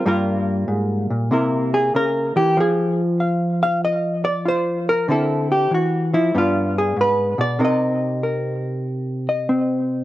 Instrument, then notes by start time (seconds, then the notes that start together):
hollow-body jazz guitar
0.06 G2 G3 A#3 F4 A#4
0.68 G#2
1.10 A#2
1.31 C3 A#3 E4 A#4
1.74 G#4
1.95 C#3 A#4
2.36 E3 G4
2.57 F3 G#4
3.20 F5
3.63 F5
3.85 D#5
4.25 D5
4.45 F4 C5
4.89 A#4
5.08 D3 C4 E4 A4
5.52 G4
5.71 E3 F#4
6.14 F3 E4
6.34 G2 B3 D4 F4
6.78 G#4
6.96 G#2
7.01 B4
7.38 B2 D5
7.59 C3 C4 D#4 A#4
7.65 D#5
8.23 A#4
9.29 D#5
9.49 C4